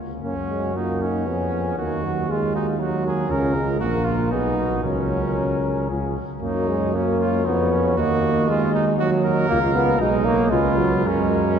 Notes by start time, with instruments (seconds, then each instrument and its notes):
0.22 bass trombone F#2, trombone A#3, trumpet C#4 F#4, french horn C#4
0.49 trombone G#3
0.75 trombone A#3, trumpet D#4, french horn F4
1.02 trumpet C#4, french horn D#4
1.26 bass trombone F2, trombone B3, french horn C#4, trumpet G#4
1.78 bass trombone D#2, trombone A#3, french horn D#4, trumpet F#4
2.04 trombone F#3
2.28 trombone G#3, trumpet F4, french horn G#4
2.55 trumpet D#4, french horn F#4
2.79 trombone F#3, trumpet D#4 F#4
3.05 trumpet G#4 A#4
3.29 bass trombone C#2, trombone C#4, french horn F4, trumpet A#4
3.55 trombone G#3
3.80 bass trombone A#1, trombone A#3, french horn F4, trumpet F#4 A#4
4.05 trumpet F4
4.31 bass trombone B1, trombone B3, trumpet D#4 G#4, french horn D#4
4.57 trumpet F#4
4.83 bass trombone C#2, trombone F#3, trumpet C#4 A#4, french horn C#4
5.89 bass trombone C#2, french horn F4, trumpet G#4
6.41 bass trombone F#2, trombone A#3, trumpet D#4 C#5, french horn F#4
6.69 trombone G#3
6.94 trombone A#3, trumpet C#4 C#5, french horn F#4
7.20 trumpet F4
7.46 bass trombone F2, trombone B3, trumpet D#4
7.71 trumpet C#4
7.97 bass trombone D#2, trombone A#3, trumpet F#4 D#5, french horn F#4
8.48 trombone G#3, trumpet F4
8.74 trumpet D#4
8.99 trombone F#3, french horn F#4, trumpet F#4 D#5
9.24 trumpet A#4
9.48 bass trombone C#2, trombone A#3, french horn F4, trumpet F5
9.74 trombone B3
9.99 bass trombone B1, trombone G#3, trumpet D#4 D#5, french horn F#4
10.25 trombone A#3, trumpet C#5
10.51 bass trombone C#2, trombone G#3, trumpet F4 B4, french horn F4
10.78 trombone F#3
11.05 bass trombone F#2, trombone G#3, trumpet C#4 A#4, french horn F#4